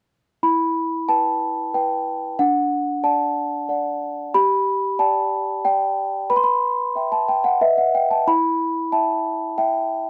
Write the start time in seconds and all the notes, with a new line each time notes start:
0.43 E4 B5
1.09 B4 G5 A5
1.74 B4 G5
2.39 D4 F#5
3.04 D5 F#5 A5
3.69 D5 F#5
4.34 G4 B5
4.99 D5 G5 A5
5.65 D5 G5
6.30 B4 B5
6.36 C6
6.44 B5
6.95 E5 G5
7.12 A5
7.28 G5
7.44 F#5
7.61 B4 D#5 E5 F#5
7.78 F#5
7.95 G5
8.11 A5
8.27 E4 B5
8.92 E5 G5 A5
9.58 E5 G5